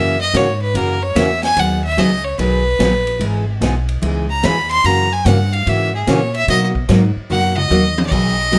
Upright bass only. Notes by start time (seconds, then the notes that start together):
Already playing: F#2
0.34 G#2
0.74 F#2
1.15 E2
1.57 D#2
1.98 C#2
2.39 B1
2.79 A#1
3.20 G#1
3.61 B1
4.02 C#2
4.44 D#2
4.84 F#2
5.25 G2
5.67 G#2
6.07 A#2
6.48 B2
6.89 G#2
7.16 muted upright bass stroke
7.30 F#2
7.70 D#2
8.12 B1